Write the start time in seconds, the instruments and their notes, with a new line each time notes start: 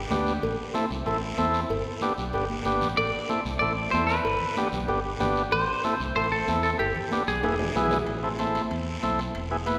0.11 fingered electric bass D2, transistor combo organ B3 D4 G4, high conga, low conga, low timbale, short guiro
0.26 short guiro
0.42 fingered electric bass A1, cowbell, high conga, long guiro
0.74 transistor combo organ C4 E4 A4, high conga, short guiro
0.91 fingered electric bass C2, short guiro
1.06 fingered electric bass A1, transistor combo organ C4 E4 A4, cowbell, high conga, long guiro
1.38 fingered electric bass E2, transistor combo organ C4 E4 A4, high conga, short guiro
1.54 short guiro
1.69 fingered electric bass G1, cowbell, high conga, long guiro
2.01 transistor combo organ B3 D4 G4, high conga, short guiro
2.18 fingered electric bass B1, short guiro
2.33 fingered electric bass G1, transistor combo organ B3 D4 G4, cowbell, high conga, long guiro
2.50 high conga
2.65 fingered electric bass G1, transistor combo organ B3 D4 G4, high conga, short guiro
2.81 fingered electric bass A1, low conga, short guiro
2.97 fingered electric bass A1, clean electric guitar D5, cowbell, high conga, long guiro
3.29 transistor combo organ C4 E4 A4, high conga, short guiro
3.45 fingered electric bass C2, short guiro
3.59 fingered electric bass A1, transistor combo organ C4 E4 A4, clean electric guitar D5, cowbell, high conga, long guiro
3.91 fingered electric bass E2, transistor combo organ C4 E4 A4, clean electric guitar C5, high conga, short guiro
4.07 clean electric guitar B4, short guiro
4.25 fingered electric bass G1, cowbell, high conga, long guiro
4.40 low conga
4.56 transistor combo organ B3 D4 G4, high conga, short guiro
4.72 fingered electric bass B1, short guiro
4.88 fingered electric bass G1, transistor combo organ B3 D4 G4, cowbell, high conga, long guiro
5.20 fingered electric bass G1, transistor combo organ B3 D4 G4, high conga, low conga, low timbale, short guiro
5.36 short guiro
5.51 fingered electric bass A1, clean electric guitar C5, cowbell, high conga, long guiro
5.83 transistor combo organ C4 E4 A4, high conga, short guiro
6.00 fingered electric bass C2, short guiro
6.15 fingered electric bass A1, transistor combo organ C4 E4 A4, clean electric guitar C5, cowbell, high conga, long guiro
6.32 clean electric guitar A4
6.47 fingered electric bass E2, transistor combo organ C4 E4 A4, high conga, short guiro
6.63 clean electric guitar A4, short guiro
6.79 fingered electric bass G1, clean electric guitar G4, cowbell, high conga, long guiro
6.95 low conga
7.11 transistor combo organ B3 D4 G4, high conga, short guiro
7.27 fingered electric bass B1, clean electric guitar G#4, short guiro
7.43 fingered electric bass E1, transistor combo organ B3 E4 G#4, cowbell, high conga, high timbale, long guiro
7.59 low timbale
7.64 low conga
7.75 fingered electric bass B1, transistor combo organ B3 E4 G#4, low timbale, short guiro
7.86 low conga
7.91 low timbale, short guiro
7.96 low conga
8.07 fingered electric bass A1, high timbale, long guiro
8.23 transistor combo organ C4 E4 A4
8.39 transistor combo organ C4 E4 A4, high conga, high timbale, short guiro
8.55 high conga, high timbale, short guiro
8.71 fingered electric bass E2, high timbale, long guiro
9.03 fingered electric bass B1, transistor combo organ C4 E4 A4, high conga, high timbale, short guiro
9.19 high timbale, short guiro
9.35 fingered electric bass E1, high timbale, long guiro
9.51 transistor combo organ B3 E4 G#4
9.66 transistor combo organ B3 E4 B4, high conga, high timbale, short guiro